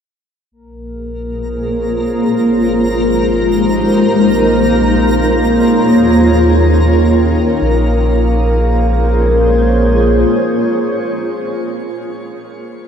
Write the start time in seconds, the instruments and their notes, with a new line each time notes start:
0.51 sub bass A#1, synth drone A#3 A#4, ambient pad A#3, synth texture A#4 A#5
0.79 ambient pad G#4 C5
0.85 ambient pad F4
2.32 sub bass G#1, ambient pad G#3
2.46 ambient pad D#4
3.11 ambient pad A#4
4.08 sub bass A#1, ambient pad A#3
4.27 ambient pad F4
4.86 ambient pad C#5
5.83 sub bass D#2, ambient pad D#4
7.60 sub bass A#1, synth drone A#3 A#4, ambient pad A#3
7.75 ambient pad F4
7.88 ambient pad G#4
8.02 ambient pad C5
8.14 ambient pad C#5